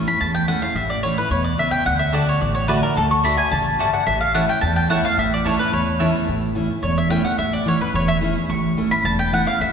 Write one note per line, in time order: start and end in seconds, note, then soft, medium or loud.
0.00 0.17 A2 medium
0.07 0.20 C#4 medium
0.07 0.20 E4 medium
0.07 0.20 B5 loud
0.20 0.73 E2 medium
0.20 0.60 E2 medium
0.20 0.34 A5 medium
0.35 0.48 G5 loud
0.48 0.61 E3 medium
0.48 0.61 A3 loud
0.48 0.62 C#4 medium
0.48 0.61 E4 medium
0.48 0.61 F#5 loud
0.62 0.76 C#4 medium
0.62 0.75 E4 medium
0.62 0.75 F5 medium
0.75 1.14 A1 medium
0.75 1.28 A2 medium
0.75 0.89 E5 medium
0.90 1.03 D5 medium
1.03 1.17 E3 medium
1.03 1.17 A3 loud
1.03 1.17 C#4 medium
1.03 1.17 E4 loud
1.03 1.16 C#5 medium
1.18 1.32 C#4 soft
1.18 1.31 E4 medium
1.18 1.31 B4 medium
1.30 1.70 E2 medium
1.30 1.57 B2 medium
1.30 1.44 C#5 medium
1.44 1.58 D5 medium
1.58 1.85 C#3 medium
1.58 1.71 E5 medium
1.71 1.85 G5 loud
1.85 2.25 D2 medium
1.85 2.12 D3 medium
1.85 1.99 F#5 medium
1.99 2.13 E5 medium
2.12 2.40 D3 medium
2.12 2.22 A3 medium
2.12 2.40 A3 medium
2.12 2.40 D4 loud
2.12 2.22 F#4 medium
2.12 2.40 F#4 loud
2.12 2.23 D5 medium
2.12 2.27 D5 medium
2.12 2.23 A5 medium
2.29 2.41 C#5 medium
2.41 2.81 A1 medium
2.41 2.94 A2 medium
2.41 2.54 D5 medium
2.55 2.68 C#5 medium
2.67 2.82 D3 medium
2.67 2.82 A3 loud
2.67 2.78 A3 medium
2.67 2.82 D4 loud
2.67 2.80 F#4 loud
2.67 2.78 F#4 medium
2.67 2.82 B4 medium
2.67 2.78 D5 medium
2.67 2.78 A5 medium
2.82 2.96 D4 soft
2.82 2.96 F#4 medium
2.82 2.96 A#4 medium
2.96 3.36 D2 medium
2.96 3.23 D3 medium
2.96 3.05 A4 medium
3.11 3.24 C#6 medium
3.24 3.38 D3 medium
3.24 3.33 A3 medium
3.24 3.38 A3 loud
3.24 3.38 D4 loud
3.24 3.33 F#4 medium
3.24 3.37 F#4 loud
3.24 3.34 D5 medium
3.24 3.34 A5 loud
3.24 3.37 B5 medium
3.37 3.52 D4 soft
3.37 3.51 F#4 medium
3.37 3.51 G#5 loud
3.51 3.91 A1 medium
3.51 3.78 C#3 medium
3.51 3.90 A5 medium
3.79 4.06 G2 medium
3.79 3.89 A3 medium
3.79 3.89 F#4 medium
3.79 3.89 D5 medium
3.79 3.89 A5 medium
3.93 4.06 F#5 medium
4.07 4.46 A1 medium
4.07 4.60 A2 medium
4.07 4.20 E5 medium
4.21 4.34 F5 medium
4.34 4.48 E3 medium
4.34 4.44 A3 medium
4.34 4.48 A3 loud
4.34 4.48 C#4 loud
4.34 4.44 E4 medium
4.34 4.47 E4 loud
4.34 4.44 C#5 medium
4.34 4.48 F#5 medium
4.34 4.44 A5 loud
4.48 4.63 C#4 medium
4.48 4.62 E4 medium
4.48 4.61 G5 medium
4.61 5.14 E2 loud
4.61 5.02 E2 medium
4.61 4.75 A5 loud
4.76 4.90 G5 medium
4.89 5.16 E3 medium
4.89 4.99 A3 medium
4.89 5.17 A3 medium
4.89 5.17 C#4 loud
4.89 4.99 E4 medium
4.89 5.17 E4 loud
4.89 4.99 C#5 medium
4.89 5.04 F#5 loud
4.89 5.00 A5 loud
5.05 5.18 F5 loud
5.17 5.57 A1 medium
5.17 5.70 A2 medium
5.17 5.32 E5 medium
5.34 5.46 D5 medium
5.44 5.59 E3 loud
5.44 5.54 A3 medium
5.44 5.59 A3 medium
5.44 5.59 C#4 loud
5.44 5.54 E4 medium
5.44 5.58 E4 loud
5.44 5.54 C#5 medium
5.44 5.59 C#5 medium
5.44 5.55 A5 medium
5.59 5.73 C#4 soft
5.59 5.72 E4 medium
5.59 5.73 B4 loud
5.72 6.25 E2 loud
5.72 6.13 E2 medium
5.72 6.18 C#5 medium
5.99 6.27 E3 medium
5.99 6.09 A3 medium
5.99 6.27 A3 medium
5.99 6.27 C#4 medium
5.99 6.09 E4 medium
5.99 6.27 E4 loud
5.99 6.09 C#5 loud
5.99 6.10 A5 loud
6.27 6.68 A1 medium
6.27 6.80 A2 medium
6.55 6.69 E3 medium
6.55 6.69 A3 medium
6.55 6.68 C#4 loud
6.55 6.67 E4 loud
6.68 6.83 C#4 medium
6.68 6.82 E4 medium
6.82 7.23 E1 medium
6.82 7.36 E2 medium
6.82 6.97 C#5 medium
6.98 7.10 E5 loud
7.09 7.24 E3 medium
7.09 7.24 A3 loud
7.09 7.24 C#4 loud
7.09 7.22 E4 medium
7.09 7.24 G5 loud
7.23 7.38 C#4 soft
7.23 7.38 E4 soft
7.23 7.38 F#5 medium
7.38 7.78 A1 medium
7.38 7.91 A2 medium
7.38 7.52 E5 medium
7.53 7.66 D5 medium
7.66 7.79 E3 medium
7.66 7.80 A3 loud
7.66 7.80 C#4 loud
7.66 7.79 E4 medium
7.66 7.81 C#5 medium
7.80 7.94 C#4 soft
7.80 7.93 E4 medium
7.80 7.94 B4 medium
7.94 8.33 E1 medium
7.94 8.47 E2 medium
7.94 8.08 C#5 medium
8.08 8.16 E5 loud
8.21 8.35 E3 medium
8.21 8.35 A3 loud
8.21 8.35 C#4 medium
8.21 8.34 E4 loud
8.35 8.49 C#4 soft
8.35 8.49 E4 medium
8.50 8.89 A1 loud
8.50 9.02 A2 medium
8.50 8.88 C#6 medium
8.77 8.90 E3 loud
8.77 8.91 A3 loud
8.77 8.91 C#4 loud
8.77 8.91 E4 loud
8.91 9.05 C#4 soft
8.91 9.05 E4 medium
8.91 9.05 B5 loud
9.04 9.44 E1 medium
9.04 9.58 E2 loud
9.04 9.18 A5 medium
9.19 9.32 G5 loud
9.32 9.46 E3 medium
9.32 9.46 A3 loud
9.32 9.46 C#4 medium
9.32 9.44 E4 loud
9.32 9.46 F#5 medium
9.46 9.60 C#4 soft
9.46 9.59 E4 medium
9.46 9.60 F5 loud
9.60 9.72 A1 medium
9.60 9.72 A2 medium
9.60 9.72 E5 medium